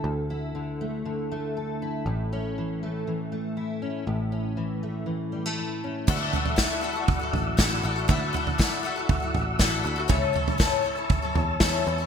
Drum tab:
CC |----------------|----------------|----------------|x---------------|
SD |----------------|----------------|----------------|----o-------o---|
FT |----------------|----------------|----------------|o-oo----o-o-----|
BD |----------------|----------------|----------------|o---o---o---o---|

CC |----------------|----------------|
SD |----o-------o---|----o-------o---|
FT |o-oo----o-o-----|o-oo----o-o-----|
BD |o---o---o---o---|o---o---o---o---|